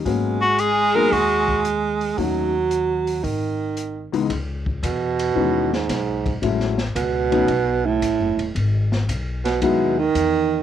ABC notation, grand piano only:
X:1
M:4/4
L:1/8
Q:"Swing" 1/4=113
K:G#m
V:1 name="Grand piano"
[F,A,B,C] z2 [F,A,B,D] z4 | [F,=A,CD] z6 [C,,E,G,B,D] | [K:C#m] z4 [E,G,B,CD] z3 | [F,G,A,CE] z2 [F,A,B,CD] z4 |
z4 [F,G,B,DE] z3 |]